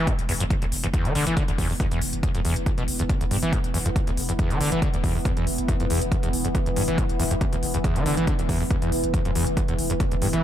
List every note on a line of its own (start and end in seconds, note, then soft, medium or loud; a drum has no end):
0.00 10.44 E3 medium
0.00 10.44 B3 medium
0.07 0.14 F2 medium
0.07 kick loud
0.07 closed hi-hat medium
0.19 0.28 E1 medium
0.19 closed hi-hat medium
0.29 0.40 E1 medium
0.29 0.33 E2 medium
0.29 open hi-hat loud
0.40 0.50 E1 medium
0.40 0.44 F2 loud
0.40 closed hi-hat medium
0.50 0.54 E2 medium
0.50 kick loud
0.50 closed hi-hat medium
0.62 0.71 E1 medium
0.62 0.65 D2 medium
0.62 closed hi-hat medium
0.72 0.83 E1 loud
0.72 open hi-hat loud
0.83 0.93 E1 medium
0.83 0.87 E2 medium
0.83 closed hi-hat medium
0.94 1.07 E2 medium
0.94 kick loud
0.94 closed hi-hat medium
1.05 1.15 E1 medium
1.05 1.13 E3 medium
1.05 closed hi-hat medium
1.15 1.26 E1 medium
1.15 1.25 D3 loud
1.15 open hi-hat loud
1.27 1.37 E1 medium
1.27 1.35 E3 medium
1.27 closed hi-hat medium
1.37 1.43 D3 loud
1.37 kick loud
1.37 closed hi-hat medium
1.48 1.58 E1 medium
1.48 1.52 D2 medium
1.48 closed hi-hat medium
1.58 1.69 E1 loud
1.58 1.68 E2 loud
1.58 kick medium
1.58 open hi-hat loud
1.70 1.80 E1 medium
1.70 1.73 E2 medium
1.70 open hi-hat medium
1.80 1.86 E2 medium
1.80 kick loud
1.80 closed hi-hat medium
1.91 2.01 E1 medium
1.91 2.00 E2 medium
1.91 closed hi-hat medium
2.02 2.12 E1 loud
2.02 open hi-hat loud
2.13 2.23 E1 medium
2.13 closed hi-hat medium
2.23 2.29 E2 loud
2.23 kick loud
2.23 closed hi-hat medium
2.35 2.44 E1 medium
2.35 2.40 F2 medium
2.35 closed hi-hat medium
2.45 2.56 E1 loud
2.45 2.54 E2 loud
2.45 open hi-hat loud
2.56 2.66 E1 medium
2.56 closed hi-hat medium
2.66 2.70 E2 medium
2.66 kick loud
2.66 closed hi-hat medium
2.78 2.87 E1 medium
2.78 2.83 B2 medium
2.78 closed hi-hat medium
2.88 2.99 E1 medium
2.88 open hi-hat loud
2.99 3.09 E1 medium
2.99 3.03 E2 medium
2.99 closed hi-hat medium
3.09 3.13 E2 medium
3.09 kick loud
3.09 closed hi-hat medium
3.21 3.30 E1 medium
3.21 3.24 D2 medium
3.21 closed hi-hat medium
3.31 3.42 E1 loud
3.31 3.37 G2 medium
3.31 open hi-hat loud
3.42 3.52 E1 medium
3.42 3.54 E3 medium
3.42 closed hi-hat soft
3.53 3.59 F2 medium
3.53 kick loud
3.53 closed hi-hat medium
3.64 3.74 E1 medium
3.64 closed hi-hat medium
3.74 3.85 E1 loud
3.74 3.78 E2 medium
3.74 open hi-hat loud
3.86 3.96 E1 medium
3.86 3.89 F2 loud
3.86 closed hi-hat medium
3.96 4.00 E2 medium
3.96 kick loud
3.96 closed hi-hat medium
4.07 4.17 E1 medium
4.07 4.11 D2 medium
4.07 closed hi-hat medium
4.17 4.28 E1 loud
4.17 open hi-hat loud
4.29 4.39 E1 medium
4.29 4.32 E2 medium
4.29 closed hi-hat medium
4.39 4.52 E2 loud
4.39 kick loud
4.39 closed hi-hat medium
4.50 4.60 E1 medium
4.50 4.59 E3 medium
4.50 closed hi-hat medium
4.61 4.71 E1 medium
4.61 4.70 D3 loud
4.61 open hi-hat loud
4.72 4.82 E1 medium
4.72 4.80 E3 medium
4.72 closed hi-hat medium
4.82 4.88 D3 loud
4.82 kick loud
4.82 closed hi-hat medium
4.94 5.03 E1 medium
4.94 4.97 D2 medium
4.94 closed hi-hat medium
5.04 5.15 E1 loud
5.04 5.13 E2 loud
5.04 kick medium
5.04 open hi-hat loud
5.15 5.25 E1 medium
5.15 5.18 E2 medium
5.15 open hi-hat medium
5.25 5.32 E2 medium
5.25 kick loud
5.25 closed hi-hat medium
5.37 5.46 E1 medium
5.37 5.45 E2 medium
5.37 closed hi-hat medium
5.47 5.58 E1 loud
5.47 open hi-hat loud
5.58 5.68 E1 medium
5.58 closed hi-hat medium
5.68 5.75 E2 loud
5.68 kick loud
5.68 closed hi-hat medium
5.80 5.89 E1 medium
5.80 5.85 F2 medium
5.80 closed hi-hat soft
5.90 6.01 E1 medium
5.90 5.99 E2 loud
5.90 open hi-hat loud
6.01 6.11 E1 medium
6.01 closed hi-hat medium
6.12 6.15 E2 medium
6.12 kick loud
6.12 closed hi-hat medium
6.23 6.33 E1 medium
6.23 6.29 E2 medium
6.23 closed hi-hat medium
6.33 6.44 E1 loud
6.33 open hi-hat loud
6.45 6.55 E1 medium
6.45 6.48 E2 medium
6.45 closed hi-hat medium
6.55 6.59 E2 medium
6.55 kick loud
6.55 closed hi-hat medium
6.66 6.76 E1 medium
6.66 6.70 D2 medium
6.66 closed hi-hat medium
6.76 6.87 E1 loud
6.76 6.83 G2 medium
6.76 open hi-hat loud
6.88 6.98 E1 medium
6.88 7.00 E3 medium
6.88 closed hi-hat soft
6.98 7.04 F2 medium
6.98 kick loud
6.98 closed hi-hat medium
7.09 7.19 E1 medium
7.09 closed hi-hat soft
7.20 7.30 E1 loud
7.20 7.23 E2 medium
7.20 open hi-hat loud
7.31 7.41 E1 medium
7.31 7.34 F2 loud
7.31 closed hi-hat medium
7.41 7.45 E2 medium
7.41 kick loud
7.41 closed hi-hat medium
7.53 7.62 E1 medium
7.53 7.56 D2 medium
7.53 closed hi-hat medium
7.63 7.74 E1 loud
7.63 open hi-hat loud
7.74 7.84 E1 medium
7.74 7.77 E2 medium
7.74 closed hi-hat soft
7.84 7.97 E2 loud
7.84 kick loud
7.84 closed hi-hat medium
7.96 8.05 E1 medium
7.96 8.04 E3 medium
7.96 closed hi-hat medium
8.06 8.17 E1 loud
8.06 8.15 D3 loud
8.06 open hi-hat loud
8.17 8.27 E1 medium
8.17 8.26 E3 medium
8.17 closed hi-hat soft
8.27 8.34 D3 loud
8.27 kick loud
8.27 closed hi-hat medium
8.39 8.48 E1 medium
8.39 8.42 D2 medium
8.39 closed hi-hat soft
8.49 8.60 E1 loud
8.49 8.58 E2 loud
8.49 kick medium
8.49 open hi-hat loud
8.60 8.70 E1 medium
8.60 8.64 E2 medium
8.60 open hi-hat medium
8.71 8.77 E2 medium
8.71 kick loud
8.71 closed hi-hat medium
8.82 8.92 E1 medium
8.82 8.90 E2 medium
8.82 closed hi-hat medium
8.92 9.03 E1 loud
8.92 open hi-hat loud
9.04 9.14 E1 medium
9.04 closed hi-hat medium
9.14 9.20 E2 loud
9.14 kick loud
9.14 closed hi-hat medium
9.25 9.35 E1 medium
9.25 9.31 F2 medium
9.25 closed hi-hat soft
9.35 9.46 E1 loud
9.35 9.45 E2 loud
9.35 open hi-hat loud
9.47 9.57 E1 medium
9.47 closed hi-hat soft
9.57 9.61 E2 medium
9.57 kick loud
9.57 closed hi-hat medium
9.68 9.78 E1 medium
9.68 9.74 E2 medium
9.68 closed hi-hat medium
9.78 9.89 E1 loud
9.78 open hi-hat loud
9.90 10.00 E1 medium
9.90 9.93 E2 medium
9.90 closed hi-hat medium
10.00 10.04 E2 medium
10.00 kick loud
10.00 closed hi-hat medium
10.12 10.21 E1 medium
10.12 10.15 D2 medium
10.12 closed hi-hat medium
10.22 10.32 E1 loud
10.22 10.28 G2 medium
10.22 open hi-hat loud
10.33 10.43 E1 medium
10.33 10.44 E3 medium
10.33 closed hi-hat soft